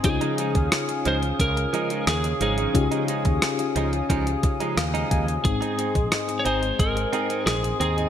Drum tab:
HH |xxxxxxxxxxxxxxxx|xxxxxxxxxxxxxxxx|xxxxxxxxxxxxxxxx|
SD |----r-------r---|----r-------r---|----r-------r---|
BD |o--o----o-------|o--o----o-o---o-|o--o----o-------|